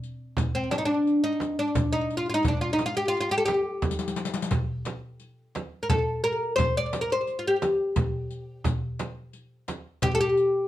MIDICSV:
0, 0, Header, 1, 5, 480
1, 0, Start_track
1, 0, Tempo, 689655
1, 260, Time_signature, 3, 2, 24, 8
1, 7433, End_track
2, 0, Start_track
2, 0, Title_t, "Oud"
2, 0, Program_c, 0, 24
2, 382, Note_on_c, 0, 60, 70
2, 493, Note_off_c, 0, 60, 0
2, 496, Note_on_c, 0, 62, 72
2, 541, Note_off_c, 0, 62, 0
2, 543, Note_on_c, 0, 63, 64
2, 592, Note_off_c, 0, 63, 0
2, 594, Note_on_c, 0, 62, 75
2, 858, Note_off_c, 0, 62, 0
2, 861, Note_on_c, 0, 63, 82
2, 1104, Note_off_c, 0, 63, 0
2, 1107, Note_on_c, 0, 62, 76
2, 1337, Note_off_c, 0, 62, 0
2, 1340, Note_on_c, 0, 63, 85
2, 1509, Note_off_c, 0, 63, 0
2, 1512, Note_on_c, 0, 65, 73
2, 1589, Note_off_c, 0, 65, 0
2, 1598, Note_on_c, 0, 65, 63
2, 1625, Note_off_c, 0, 65, 0
2, 1629, Note_on_c, 0, 63, 89
2, 1724, Note_off_c, 0, 63, 0
2, 1727, Note_on_c, 0, 62, 74
2, 1816, Note_off_c, 0, 62, 0
2, 1818, Note_on_c, 0, 65, 76
2, 1897, Note_off_c, 0, 65, 0
2, 1900, Note_on_c, 0, 63, 85
2, 1979, Note_off_c, 0, 63, 0
2, 1990, Note_on_c, 0, 65, 83
2, 2063, Note_off_c, 0, 65, 0
2, 2066, Note_on_c, 0, 67, 92
2, 2136, Note_off_c, 0, 67, 0
2, 2145, Note_on_c, 0, 65, 95
2, 2223, Note_off_c, 0, 65, 0
2, 2231, Note_on_c, 0, 65, 83
2, 2303, Note_off_c, 0, 65, 0
2, 2306, Note_on_c, 0, 67, 94
2, 2348, Note_off_c, 0, 67, 0
2, 2350, Note_on_c, 0, 69, 77
2, 2399, Note_off_c, 0, 69, 0
2, 2405, Note_on_c, 0, 67, 96
2, 3473, Note_off_c, 0, 67, 0
2, 4056, Note_on_c, 0, 70, 55
2, 4101, Note_off_c, 0, 70, 0
2, 4104, Note_on_c, 0, 69, 78
2, 4338, Note_off_c, 0, 69, 0
2, 4341, Note_on_c, 0, 70, 83
2, 4559, Note_off_c, 0, 70, 0
2, 4564, Note_on_c, 0, 72, 97
2, 4711, Note_off_c, 0, 72, 0
2, 4714, Note_on_c, 0, 74, 98
2, 4877, Note_off_c, 0, 74, 0
2, 4880, Note_on_c, 0, 70, 74
2, 4949, Note_off_c, 0, 70, 0
2, 4957, Note_on_c, 0, 72, 87
2, 5143, Note_on_c, 0, 65, 61
2, 5146, Note_off_c, 0, 72, 0
2, 5186, Note_off_c, 0, 65, 0
2, 5202, Note_on_c, 0, 67, 82
2, 6061, Note_off_c, 0, 67, 0
2, 6979, Note_on_c, 0, 67, 99
2, 7059, Note_off_c, 0, 67, 0
2, 7063, Note_on_c, 0, 69, 96
2, 7101, Note_off_c, 0, 69, 0
2, 7103, Note_on_c, 0, 67, 99
2, 7433, Note_off_c, 0, 67, 0
2, 7433, End_track
3, 0, Start_track
3, 0, Title_t, "Darbuka"
3, 262, Note_on_c, 9, 64, 71
3, 332, Note_off_c, 9, 64, 0
3, 506, Note_on_c, 9, 63, 68
3, 575, Note_off_c, 9, 63, 0
3, 748, Note_on_c, 9, 62, 26
3, 818, Note_off_c, 9, 62, 0
3, 982, Note_on_c, 9, 63, 60
3, 1052, Note_off_c, 9, 63, 0
3, 1219, Note_on_c, 9, 64, 88
3, 1289, Note_off_c, 9, 64, 0
3, 1702, Note_on_c, 9, 64, 84
3, 1772, Note_off_c, 9, 64, 0
3, 1939, Note_on_c, 9, 63, 63
3, 2009, Note_off_c, 9, 63, 0
3, 2423, Note_on_c, 9, 63, 68
3, 2492, Note_off_c, 9, 63, 0
3, 2663, Note_on_c, 9, 63, 51
3, 2732, Note_off_c, 9, 63, 0
3, 2779, Note_on_c, 9, 62, 63
3, 2849, Note_off_c, 9, 62, 0
3, 2905, Note_on_c, 9, 63, 73
3, 2975, Note_off_c, 9, 63, 0
3, 3024, Note_on_c, 9, 62, 86
3, 3094, Note_off_c, 9, 62, 0
3, 3140, Note_on_c, 9, 64, 95
3, 3210, Note_off_c, 9, 64, 0
3, 3384, Note_on_c, 9, 63, 80
3, 3453, Note_off_c, 9, 63, 0
3, 3626, Note_on_c, 9, 62, 25
3, 3695, Note_off_c, 9, 62, 0
3, 3863, Note_on_c, 9, 63, 63
3, 3933, Note_off_c, 9, 63, 0
3, 4101, Note_on_c, 9, 64, 80
3, 4171, Note_off_c, 9, 64, 0
3, 4588, Note_on_c, 9, 64, 73
3, 4657, Note_off_c, 9, 64, 0
3, 4827, Note_on_c, 9, 63, 73
3, 4896, Note_off_c, 9, 63, 0
3, 5072, Note_on_c, 9, 62, 25
3, 5141, Note_off_c, 9, 62, 0
3, 5310, Note_on_c, 9, 63, 68
3, 5379, Note_off_c, 9, 63, 0
3, 5546, Note_on_c, 9, 64, 85
3, 5615, Note_off_c, 9, 64, 0
3, 6028, Note_on_c, 9, 64, 85
3, 6098, Note_off_c, 9, 64, 0
3, 6265, Note_on_c, 9, 63, 80
3, 6335, Note_off_c, 9, 63, 0
3, 6504, Note_on_c, 9, 62, 25
3, 6573, Note_off_c, 9, 62, 0
3, 6742, Note_on_c, 9, 63, 66
3, 6812, Note_off_c, 9, 63, 0
3, 6982, Note_on_c, 9, 64, 89
3, 7051, Note_off_c, 9, 64, 0
3, 7433, End_track
4, 0, Start_track
4, 0, Title_t, "Frame drum"
4, 255, Note_on_c, 9, 64, 93
4, 325, Note_off_c, 9, 64, 0
4, 496, Note_on_c, 9, 64, 76
4, 566, Note_off_c, 9, 64, 0
4, 975, Note_on_c, 9, 64, 67
4, 1045, Note_off_c, 9, 64, 0
4, 1221, Note_on_c, 9, 64, 92
4, 1291, Note_off_c, 9, 64, 0
4, 1702, Note_on_c, 9, 64, 88
4, 1771, Note_off_c, 9, 64, 0
4, 1943, Note_on_c, 9, 64, 65
4, 2013, Note_off_c, 9, 64, 0
4, 2423, Note_on_c, 9, 64, 67
4, 2493, Note_off_c, 9, 64, 0
4, 2660, Note_on_c, 9, 64, 87
4, 2730, Note_off_c, 9, 64, 0
4, 3143, Note_on_c, 9, 64, 85
4, 3213, Note_off_c, 9, 64, 0
4, 3386, Note_on_c, 9, 64, 70
4, 3456, Note_off_c, 9, 64, 0
4, 3868, Note_on_c, 9, 64, 69
4, 3938, Note_off_c, 9, 64, 0
4, 4107, Note_on_c, 9, 64, 93
4, 4177, Note_off_c, 9, 64, 0
4, 4583, Note_on_c, 9, 64, 96
4, 4653, Note_off_c, 9, 64, 0
4, 4823, Note_on_c, 9, 64, 73
4, 4892, Note_off_c, 9, 64, 0
4, 5304, Note_on_c, 9, 64, 76
4, 5373, Note_off_c, 9, 64, 0
4, 5542, Note_on_c, 9, 64, 90
4, 5611, Note_off_c, 9, 64, 0
4, 6016, Note_on_c, 9, 64, 92
4, 6086, Note_off_c, 9, 64, 0
4, 6262, Note_on_c, 9, 64, 75
4, 6331, Note_off_c, 9, 64, 0
4, 6740, Note_on_c, 9, 64, 72
4, 6810, Note_off_c, 9, 64, 0
4, 6976, Note_on_c, 9, 64, 92
4, 7045, Note_off_c, 9, 64, 0
4, 7433, End_track
5, 0, Start_track
5, 0, Title_t, "Riq"
5, 25, Note_on_c, 9, 54, 17
5, 95, Note_off_c, 9, 54, 0
5, 264, Note_on_c, 9, 54, 62
5, 334, Note_off_c, 9, 54, 0
5, 504, Note_on_c, 9, 54, 42
5, 574, Note_off_c, 9, 54, 0
5, 746, Note_on_c, 9, 54, 19
5, 816, Note_off_c, 9, 54, 0
5, 984, Note_on_c, 9, 54, 43
5, 1053, Note_off_c, 9, 54, 0
5, 1221, Note_on_c, 9, 54, 57
5, 1291, Note_off_c, 9, 54, 0
5, 1465, Note_on_c, 9, 54, 18
5, 1534, Note_off_c, 9, 54, 0
5, 1704, Note_on_c, 9, 54, 59
5, 1774, Note_off_c, 9, 54, 0
5, 1942, Note_on_c, 9, 54, 51
5, 2011, Note_off_c, 9, 54, 0
5, 2181, Note_on_c, 9, 54, 19
5, 2250, Note_off_c, 9, 54, 0
5, 2420, Note_on_c, 9, 54, 44
5, 2490, Note_off_c, 9, 54, 0
5, 2659, Note_on_c, 9, 54, 51
5, 2721, Note_off_c, 9, 54, 0
5, 2721, Note_on_c, 9, 54, 58
5, 2776, Note_off_c, 9, 54, 0
5, 2776, Note_on_c, 9, 54, 65
5, 2838, Note_off_c, 9, 54, 0
5, 2838, Note_on_c, 9, 54, 64
5, 2897, Note_off_c, 9, 54, 0
5, 2897, Note_on_c, 9, 54, 78
5, 2959, Note_off_c, 9, 54, 0
5, 2959, Note_on_c, 9, 54, 76
5, 3018, Note_off_c, 9, 54, 0
5, 3018, Note_on_c, 9, 54, 87
5, 3079, Note_off_c, 9, 54, 0
5, 3079, Note_on_c, 9, 54, 83
5, 3137, Note_off_c, 9, 54, 0
5, 3137, Note_on_c, 9, 54, 73
5, 3206, Note_off_c, 9, 54, 0
5, 3377, Note_on_c, 9, 54, 47
5, 3447, Note_off_c, 9, 54, 0
5, 3616, Note_on_c, 9, 54, 17
5, 3686, Note_off_c, 9, 54, 0
5, 3863, Note_on_c, 9, 54, 45
5, 3933, Note_off_c, 9, 54, 0
5, 4103, Note_on_c, 9, 54, 70
5, 4173, Note_off_c, 9, 54, 0
5, 4341, Note_on_c, 9, 54, 18
5, 4411, Note_off_c, 9, 54, 0
5, 4580, Note_on_c, 9, 54, 69
5, 4649, Note_off_c, 9, 54, 0
5, 4823, Note_on_c, 9, 54, 54
5, 4892, Note_off_c, 9, 54, 0
5, 5062, Note_on_c, 9, 54, 19
5, 5132, Note_off_c, 9, 54, 0
5, 5306, Note_on_c, 9, 54, 51
5, 5375, Note_off_c, 9, 54, 0
5, 5540, Note_on_c, 9, 54, 62
5, 5609, Note_off_c, 9, 54, 0
5, 5781, Note_on_c, 9, 54, 19
5, 5850, Note_off_c, 9, 54, 0
5, 6021, Note_on_c, 9, 54, 58
5, 6091, Note_off_c, 9, 54, 0
5, 6259, Note_on_c, 9, 54, 54
5, 6329, Note_off_c, 9, 54, 0
5, 6496, Note_on_c, 9, 54, 18
5, 6565, Note_off_c, 9, 54, 0
5, 6737, Note_on_c, 9, 54, 48
5, 6806, Note_off_c, 9, 54, 0
5, 6974, Note_on_c, 9, 54, 63
5, 7044, Note_off_c, 9, 54, 0
5, 7221, Note_on_c, 9, 54, 20
5, 7290, Note_off_c, 9, 54, 0
5, 7433, End_track
0, 0, End_of_file